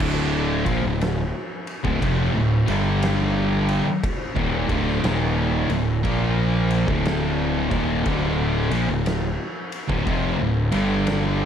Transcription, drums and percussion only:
0.00 kick loud
0.00 crash loud
0.66 kick loud
0.66 ride medium
1.01 snare loud
1.01 ride loud
1.67 ride medium
1.85 kick loud
2.02 kick loud
2.02 ride loud
2.68 ride medium
3.02 snare loud
3.02 ride loud
3.69 ride medium
4.04 kick loud
4.04 ride loud
4.36 kick loud
4.69 kick loud
4.69 ride medium
4.88 snare soft
5.04 snare loud
5.04 ride loud
5.70 ride medium
6.05 kick loud
6.05 ride loud
6.71 ride medium
6.88 kick loud
7.05 snare loud
7.05 ride loud
7.71 kick loud
7.71 ride medium
8.06 kick loud
8.06 ride medium
8.71 ride medium
9.06 snare loud
9.06 ride loud
9.72 ride medium
9.90 kick loud
10.07 kick loud
10.07 ride loud
10.72 ride medium
11.07 snare loud
11.07 ride loud

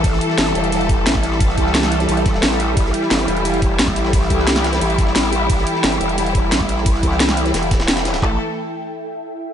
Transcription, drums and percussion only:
0.04 kick loud
0.04 closed hi-hat medium
0.04 ride medium
0.13 snare soft
0.21 closed hi-hat medium
0.21 ride medium
0.30 snare soft
0.38 snare loud
0.38 closed hi-hat medium
0.38 ride medium
0.47 closed hi-hat soft
0.55 closed hi-hat medium
0.55 ride medium
0.64 closed hi-hat soft
0.72 closed hi-hat medium
0.72 ride medium
0.81 closed hi-hat soft
0.89 kick loud
0.89 closed hi-hat medium
0.89 ride medium
1.06 snare loud
1.06 closed hi-hat medium
1.06 ride medium
1.15 kick medium
1.15 snare soft
1.23 snare soft
1.23 closed hi-hat medium
1.23 ride medium
1.32 snare medium
1.40 kick loud
1.40 closed hi-hat medium
1.40 ride medium
1.49 snare soft
1.58 kick medium
1.58 closed hi-hat medium
1.58 ride medium
1.66 snare soft
1.75 snare loud
1.75 closed hi-hat medium
1.75 ride medium
1.83 snare soft
1.83 snare medium
1.83 closed hi-hat soft
1.92 closed hi-hat medium
1.92 ride medium
2.00 snare soft
2.00 closed hi-hat soft
2.09 closed hi-hat medium
2.09 ride medium
2.17 closed hi-hat soft
2.26 kick loud
2.26 snare medium
2.26 closed hi-hat medium
2.26 ride medium
2.34 snare medium
2.43 snare loud
2.43 closed hi-hat medium
2.43 open hi-hat medium
2.43 ride medium
2.60 closed hi-hat medium
2.60 ride medium
2.77 kick loud
2.77 closed hi-hat medium
2.77 ride medium
2.85 snare soft
2.94 closed hi-hat medium
2.94 ride medium
3.02 snare soft
3.11 snare loud
3.11 closed hi-hat medium
3.11 ride medium
3.20 closed hi-hat soft
3.28 closed hi-hat medium
3.28 ride medium
3.37 closed hi-hat soft
3.45 closed hi-hat medium
3.45 ride medium
3.54 closed hi-hat soft
3.62 kick loud
3.62 closed hi-hat medium
3.62 ride medium
3.79 snare loud
3.79 closed hi-hat medium
3.79 ride loud
3.79 ride medium
3.88 kick medium
3.88 snare soft
3.96 snare soft
3.96 closed hi-hat medium
3.96 ride medium
4.05 snare medium
4.13 kick loud
4.13 closed hi-hat loud
4.13 ride medium
4.22 snare soft
4.30 kick medium
4.30 closed hi-hat medium
4.30 ride medium
4.39 snare soft
4.47 snare loud
4.47 closed hi-hat medium
4.47 ride medium
4.56 snare soft
4.56 snare medium
4.56 closed hi-hat soft
4.64 snare loud
4.64 closed hi-hat medium
4.64 ride medium
4.73 snare loud
4.73 closed hi-hat soft
4.73 ride medium
4.81 closed hi-hat medium
4.81 ride medium
4.90 closed hi-hat soft
4.98 kick loud
4.98 snare medium
4.98 closed hi-hat medium
4.98 ride medium
5.07 snare medium
5.15 snare loud
5.15 closed hi-hat medium
5.15 open hi-hat medium
5.15 ride medium
5.33 closed hi-hat medium
5.33 ride medium
5.50 kick loud
5.50 closed hi-hat loud
5.50 ride medium
5.58 snare soft
5.67 closed hi-hat medium
5.67 ride medium
5.75 snare soft
5.84 snare loud
5.84 closed hi-hat loud
5.84 ride medium
5.92 closed hi-hat soft
6.01 closed hi-hat medium
6.01 ride medium
6.09 closed hi-hat soft
6.18 closed hi-hat medium
6.18 ride medium
6.26 closed hi-hat soft
6.35 kick loud
6.35 closed hi-hat medium
6.35 ride medium
6.52 snare loud
6.52 closed hi-hat loud
6.52 ride medium
6.60 kick medium
6.60 snare soft
6.69 closed hi-hat medium
6.69 ride medium
6.78 snare soft
6.86 kick loud
6.86 closed hi-hat loud
6.86 ride medium
6.95 snare soft
7.03 kick medium
7.03 closed hi-hat medium
7.03 ride medium
7.12 snare soft
7.20 snare loud
7.20 closed hi-hat medium
7.20 ride medium
7.29 snare soft
7.29 snare medium
7.29 closed hi-hat soft
7.37 closed hi-hat medium
7.37 ride medium
7.46 snare soft
7.46 closed hi-hat soft
7.54 snare loud
7.54 closed hi-hat loud
7.54 ride medium
7.63 closed hi-hat soft
7.71 kick loud
7.71 snare loud
7.71 closed hi-hat medium
7.71 ride medium
7.80 snare loud
7.80 ride medium
7.88 snare loud
7.88 closed hi-hat loud
7.88 ride medium
7.97 snare loud
7.97 closed hi-hat soft
7.97 ride medium
8.05 snare loud
8.05 closed hi-hat medium
8.05 ride medium
8.14 snare loud
8.14 ride medium
8.22 kick loud
8.22 clap medium

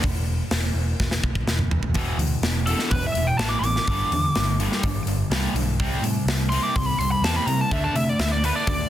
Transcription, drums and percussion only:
0.03 kick loud
0.03 open hi-hat medium
0.51 snare loud
0.51 open hi-hat medium
1.00 kick medium
1.00 snare medium
1.11 snare medium
1.24 kick medium
1.35 kick medium
1.47 snare medium
1.59 mid tom medium
1.71 floor tom medium
1.83 floor tom medium
1.94 kick loud
1.94 open hi-hat medium
2.19 open hi-hat medium
2.43 snare medium
2.43 open hi-hat medium
2.67 open hi-hat medium
2.79 snare soft
2.91 kick loud
2.91 open hi-hat medium
3.15 open hi-hat medium
3.39 snare medium
3.39 open hi-hat medium
3.64 open hi-hat medium
3.76 snare soft
3.87 kick loud
3.87 open hi-hat medium
4.12 open hi-hat soft
4.35 snare loud
4.35 open hi-hat medium
4.60 open hi-hat medium
4.72 snare soft
4.83 kick loud
4.83 open hi-hat medium
5.07 open hi-hat medium
5.32 snare loud
5.32 open hi-hat medium
5.56 open hi-hat medium
5.80 kick loud
5.80 open hi-hat medium
6.04 open hi-hat medium
6.28 snare medium
6.28 open hi-hat medium
6.52 open hi-hat medium
6.76 kick loud
6.76 open hi-hat medium
7.01 open hi-hat medium
7.24 snare loud
7.24 open hi-hat medium
7.48 open hi-hat medium
7.71 kick loud
7.71 open hi-hat medium
7.96 open hi-hat medium
8.19 snare loud
8.19 open hi-hat medium
8.44 open hi-hat medium
8.67 kick loud
8.67 open hi-hat medium

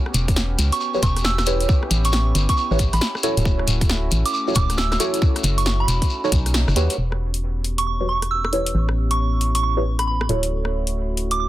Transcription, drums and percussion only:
0.06 cross-stick medium
0.14 closed hi-hat loud
0.14 shekere medium
0.28 kick loud
0.28 closed hi-hat medium
0.28 shekere soft
0.36 snare loud
0.36 shekere soft
0.59 closed hi-hat loud
0.59 shekere medium
0.72 closed hi-hat medium
0.72 shekere soft
0.80 shekere medium
0.94 shekere soft
1.03 kick loud
1.03 closed hi-hat loud
1.03 shekere medium
1.17 cross-stick soft
1.17 closed hi-hat medium
1.17 shekere soft
1.24 snare loud
1.24 shekere medium
1.38 cross-stick medium
1.38 snare medium
1.38 shekere soft
1.46 closed hi-hat loud
1.46 shekere loud
1.60 closed hi-hat medium
1.60 shekere soft
1.69 kick loud
1.69 shekere medium
1.83 cross-stick medium
1.91 closed hi-hat loud
1.91 shekere medium
2.04 closed hi-hat medium
2.04 shekere soft
2.12 snare loud
2.12 shekere soft
2.35 closed hi-hat loud
2.35 shekere medium
2.49 kick medium
2.49 closed hi-hat medium
2.49 shekere soft
2.57 shekere medium
2.72 shekere soft
2.79 kick loud
2.79 closed hi-hat loud
2.79 shekere medium
2.93 cross-stick soft
2.93 closed hi-hat medium
2.93 shekere soft
3.01 snare loud
3.01 closed hi-hat medium
3.01 shekere medium
3.15 cross-stick medium
3.15 shekere soft
3.23 closed hi-hat loud
3.23 shekere medium
3.37 closed hi-hat medium
3.37 shekere soft
3.45 kick loud
3.45 shekere soft
3.59 cross-stick medium
3.68 closed hi-hat loud
3.68 shekere medium
3.81 kick loud
3.81 closed hi-hat medium
3.81 shekere soft
3.90 snare loud
3.90 shekere soft
4.11 closed hi-hat loud
4.11 shekere medium
4.26 closed hi-hat medium
4.26 shekere soft
4.34 shekere soft
4.48 shekere soft
4.55 kick loud
4.55 closed hi-hat loud
4.55 shekere medium
4.70 cross-stick soft
4.70 closed hi-hat medium
4.70 shekere soft
4.77 snare loud
4.77 shekere soft
4.92 cross-stick medium
4.92 snare medium
4.92 shekere soft
5.00 closed hi-hat loud
5.00 shekere medium
5.14 closed hi-hat medium
5.14 shekere soft
5.22 kick loud
5.22 shekere soft
5.36 cross-stick medium
5.36 closed hi-hat soft
5.36 shekere soft
5.44 closed hi-hat loud
5.44 shekere medium
5.58 closed hi-hat medium
5.58 shekere soft
5.66 snare loud
5.66 shekere soft
5.88 closed hi-hat loud
5.88 shekere medium
6.02 kick medium
6.02 closed hi-hat medium
6.02 shekere soft
6.10 shekere medium
6.24 shekere soft
6.32 kick loud
6.32 closed hi-hat loud
6.32 shekere medium
6.46 cross-stick medium
6.46 closed hi-hat medium
6.46 shekere soft
6.54 snare loud
6.54 closed hi-hat medium
6.54 shekere medium
6.68 cross-stick medium
6.68 shekere soft
6.76 closed hi-hat loud
6.76 shekere medium
6.90 closed hi-hat medium
6.90 shekere soft
7.12 cross-stick medium
7.34 closed hi-hat medium
7.64 closed hi-hat soft
7.78 closed hi-hat medium
8.22 cross-stick soft
8.22 closed hi-hat medium
8.45 cross-stick medium
8.53 closed hi-hat soft
8.66 closed hi-hat medium
8.89 cross-stick medium
9.11 closed hi-hat medium
9.41 closed hi-hat soft
9.55 closed hi-hat medium
9.99 cross-stick medium
9.99 closed hi-hat medium
10.21 cross-stick medium
10.29 closed hi-hat soft
10.43 closed hi-hat medium
10.65 cross-stick medium
10.87 closed hi-hat medium
11.17 closed hi-hat soft
11.31 closed hi-hat medium

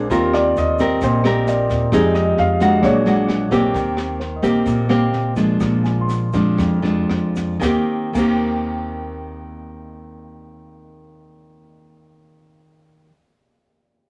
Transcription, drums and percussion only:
0.10 kick medium
0.10 snare soft
0.10 shaker medium
0.33 cross-stick medium
0.33 snare soft
0.33 shaker soft
0.56 snare soft
0.56 shaker medium
0.79 kick soft
0.79 snare soft
0.79 shaker medium
1.01 kick medium
1.01 snare soft
1.01 shaker medium
1.24 cross-stick medium
1.24 snare soft
1.24 shaker soft
1.47 snare soft
1.47 shaker medium
1.69 kick soft
1.69 snare soft
1.69 shaker medium
1.92 kick medium
1.92 cross-stick medium
1.92 snare soft
1.92 shaker medium
2.14 snare soft
2.14 shaker soft
2.37 snare soft
2.60 kick soft
2.60 snare soft
2.60 shaker medium
2.83 kick medium
2.83 cross-stick medium
2.83 snare soft
2.83 shaker medium
3.06 snare soft
3.06 shaker soft
3.29 cross-stick medium
3.29 snare soft
3.52 kick soft
3.52 snare soft
3.52 shaker medium
3.74 kick medium
3.74 snare soft
3.74 shaker medium
3.97 cross-stick medium
3.97 snare soft
3.97 shaker soft
4.20 snare soft
4.43 kick soft
4.43 snare soft
4.43 shaker medium
4.66 kick medium
4.66 snare soft
4.66 shaker medium
4.89 cross-stick medium
4.89 snare soft
4.89 shaker soft
5.13 snare soft
5.36 kick soft
5.36 snare soft
5.36 shaker medium
5.60 kick medium
5.60 cross-stick medium
5.60 snare soft
5.60 shaker medium
5.84 snare soft
5.84 shaker soft
6.09 snare soft
6.09 shaker medium
6.33 kick soft
6.33 snare soft
6.33 shaker medium
6.58 kick medium
6.58 cross-stick medium
6.58 snare soft
6.58 shaker medium
6.84 snare soft
6.84 shaker soft
7.10 cross-stick medium
7.10 snare soft
7.35 kick soft
7.35 snare soft
7.35 shaker medium
7.61 kick medium
7.61 snare medium
7.61 shaker medium
8.15 kick medium
8.15 crash medium
8.15 shaker medium

